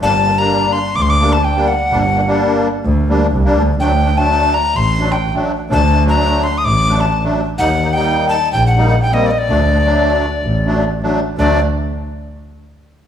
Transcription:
0.01 G1 G3 A#3 D4 A5
0.25 A#3 D4
0.38 G3 A#3 D4 A#5
0.72 C6
0.96 D2 D6
1.02 C6
1.10 D6
1.20 G3 A#3 D4
1.33 A5
1.44 G5
1.55 G3 A#3 D4
1.68 F#5
1.91 G1 G3 A#3 D4
2.15 A#3 D4
2.27 G3 A#3 D4
2.85 D2
3.09 G3 A#3 D4
3.31 C2
3.45 G3 A#3 D4
3.56 D2
3.80 D2 F#3 A3 D4 G5
4.04 A3 D4
4.16 F#3 A3 D4 A5
4.54 A#5
4.75 A1 C6
4.99 F#3 A3 D4
5.12 G5
5.34 F#3 A3 D4
5.69 D2 F#3 A3 D4 A5
5.93 A3 D4
6.05 F#3 A3 D4 A#5
6.43 C6
6.58 D#6
6.64 A1 D6
6.88 F#3 A3 D4
7.00 A5
7.23 F#3 A3 D4
7.58 D#2 G3 A#3 D#4 F#5
7.83 A#3 D#4
7.93 G3 A#3 D#4 G5
8.29 A5
8.52 A#1 G5
8.67 F#5
8.77 G3 A#3 D#4
8.88 F#5
9.02 G5
9.12 G3 A#3 C4 D#5
9.26 D5
9.31 D#5
9.38 D5
9.48 D2 F#3 A3 D4
9.72 A3 D4
9.85 F#3 A3 D4
10.43 A1
10.66 F#3 A3 D4
11.03 F#3 A3 D4
11.37 D2 F#3 A3 D4 D5

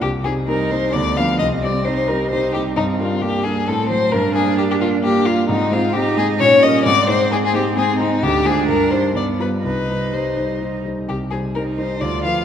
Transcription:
0.01 C2 G4
0.24 G3 C4 D#4 G#4
0.48 G3 C4 D#4 A#4
0.71 G3 C4 D#4 C5
0.93 D2 B3 D5
1.17 F3 B3 D4 F5
1.38 C2 C4 D#5
1.63 G3 C4 G4 D5
1.85 G3 C4 D#4 G4 C5
1.96 C5
2.08 G3 C4 G4 A#4
2.31 G3 C4 D#4 G4 C5
2.54 G3 C4 G4
2.76 G2 C4 D#4
2.99 G3 D4 F4 A#4
3.21 G3 A#3 D4 G4 A#4
3.43 G3 D4 G#4 A#4
3.67 A2 C4 A4
3.89 F#3 C4 C5
4.12 G2 D4 A#4
4.35 A#3 D4 G#4 A#4
4.57 A#3 D4 G4 A#4
4.71 G4
4.81 A#3 D4 F4 A#4
5.02 A#3 D4 G4 A#4
5.25 A#3 D4 F4 A#4
5.49 G#2 C4 D#4
5.71 G#3 C4 F4 C5
5.93 G#3 C4 D#4 G4 C5
6.17 G#3 C4 G#4 C5
6.40 A#2 C#4 C#5
6.62 G3 C#4 A#4 D#5
6.86 G#2 C4 D5
7.08 G#3 D#4 C5
7.31 G#3 D#4 G#4 C5
7.45 G#4
7.53 G#3 D#4 G4 C5
7.76 G#3 D#4 G#4 C5
7.99 G#3 D#4 C5
8.23 D2 D4 G4
8.45 G#3 F4 G#4 C5
8.68 G2 A#4
8.91 G3 D#4 C5
9.15 G2 B3 D5
9.39 G3 F4 B4
9.63 C2 D#4 B4
9.89 G3 D#4 C5
10.13 G3 D#4 C5
10.37 G3 D#4 C5
10.61 G3 D#4 C5
10.85 G3 D#4 C5
11.08 C2 G4
11.30 G3 D#4 G#4 C5
11.55 G3 D#4 A#4 C5
11.78 G3 D#4 C5
12.00 D2 F4 D5
12.24 F3 F4 B4 F5

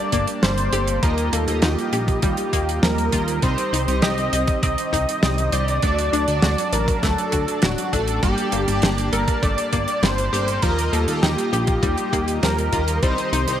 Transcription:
Already playing: G3 A#3 D4 G4 D5 A5
0.12 G1 A#3 D5, kick, closed hi-hat
0.27 closed hi-hat
0.43 G1 G3 C5, snare, closed hi-hat
0.58 closed hi-hat
0.73 G1 A#3 G4 A4 D5, closed hi-hat
0.88 closed hi-hat
1.03 D#2 F3 G3 A#3 D#4 F4 G4 A#4 D#5, kick, closed hi-hat
1.18 closed hi-hat
1.33 D#2 A#3 A4, closed hi-hat
1.48 D#2 A#3 F4 G4 D#5, closed hi-hat
1.62 D#2 D#4 G4, snare, closed hi-hat
1.79 closed hi-hat
1.93 A#1 G4, closed hi-hat
2.08 kick, closed hi-hat
2.22 D#2 G3 G4, kick, closed hi-hat
2.37 closed hi-hat
2.53 D#2 A#3, kick, closed hi-hat
2.69 closed hi-hat
2.83 D#2 F3 A#4, snare, closed hi-hat
2.98 closed hi-hat
3.12 D#2 A#3 F4 G4 D#5, kick, closed hi-hat
3.28 closed hi-hat
3.42 C2 D#3 G3 C4 D#4 G4 C5 D#5, kick, closed hi-hat
3.58 closed hi-hat
3.73 C2 D#4, closed hi-hat
3.88 C2 C4 D#4 G4 D#5, closed hi-hat
4.02 C2 G4 D#5, snare, closed hi-hat
4.18 closed hi-hat
4.33 C2 D#5, closed hi-hat
4.47 kick, closed hi-hat
4.63 C2 C4 D#5, kick, closed hi-hat
4.78 closed hi-hat
4.93 C2 D#4, kick, closed hi-hat
5.09 closed hi-hat
5.23 C2 G3, snare, closed hi-hat
5.38 closed hi-hat
5.52 C2 C4 D#4 G4 C5 D5 D#5, closed hi-hat
5.68 closed hi-hat
5.82 D2 F#3 A3 D4 F#4 D5 A5, kick, closed hi-hat
5.98 closed hi-hat
6.13 D2 D4, closed hi-hat
6.28 D2 F#3 D4 F#4 D5, closed hi-hat
6.42 D2 F#4, snare, closed hi-hat
6.58 closed hi-hat
6.73 A1 A#4 D5, closed hi-hat
6.88 kick, closed hi-hat
7.02 D2 A3 A4, kick, snare, closed hi-hat
7.18 closed hi-hat
7.32 D2 F#4, kick, closed hi-hat
7.48 closed hi-hat
7.62 D1 F#4, snare, closed hi-hat
7.78 closed hi-hat
7.93 A1 A3 D4 F#4 A4 D5, kick, closed hi-hat
8.08 closed hi-hat
8.23 G1 G3 A#3 G4 A4 D5, kick, closed hi-hat
8.38 closed hi-hat
8.52 G1 A#3, closed hi-hat
8.68 G1 A#3 G4 D5 A5, closed hi-hat
8.82 G1 D4, snare, closed hi-hat
8.98 closed hi-hat
9.12 G1 A4 A#4, closed hi-hat
9.28 kick, closed hi-hat
9.42 G1 A3 D5, kick, closed hi-hat
9.58 closed hi-hat
9.72 G1 A#3 D5, kick, closed hi-hat
9.88 closed hi-hat
10.02 G1 G3 C5, snare, closed hi-hat
10.18 closed hi-hat
10.33 G1 A#3 G4 A4 D5, closed hi-hat
10.48 closed hi-hat
10.62 D#2 F3 A#3 D#4 F4 G4 A#4 D#5, kick, closed hi-hat
10.79 closed hi-hat
10.92 D#2 A#3 A4, closed hi-hat
11.08 D#2 A#3 F4 G4 D#5, closed hi-hat
11.22 D#2 D#4 G4, snare, closed hi-hat
11.38 closed hi-hat
11.53 A#1 G4, closed hi-hat
11.67 kick, closed hi-hat
11.82 D#2 G3 G4, kick, closed hi-hat
11.98 closed hi-hat
12.13 D#2 A#3, kick, closed hi-hat
12.28 closed hi-hat
12.43 D#2 F3 A#4, snare, closed hi-hat
12.58 closed hi-hat
12.73 D#2 A#3 F4 G4 D#5, kick, closed hi-hat
12.88 closed hi-hat
13.03 C2 D#3 G3 C4 D#4 G4 C5 D#5, kick, closed hi-hat
13.18 closed hi-hat
13.33 C2 D#4, closed hi-hat
13.48 C2 C4 D#4 G4 D#5, closed hi-hat

